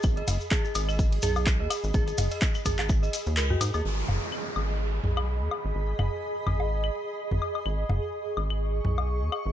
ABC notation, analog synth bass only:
X:1
M:4/4
L:1/16
Q:"Swing 16ths" 1/4=126
K:G#m
V:1 name="Analog synth bass" clef=bass
G,,, z F,,, z3 G,,,4 B,,,3 D,, z G,,, | G,,, z F,,, z3 G,,,4 z D,, C,, z G,, D,, | G,,, z F,,, z3 G,,,4 B,,,3 D,, z G,,, | G,,, z F,,, z3 G,,,4 z3 G,,, z2 |
G,,, z F,,, z3 G,,,4 B,,,3 D,, z G,,, |]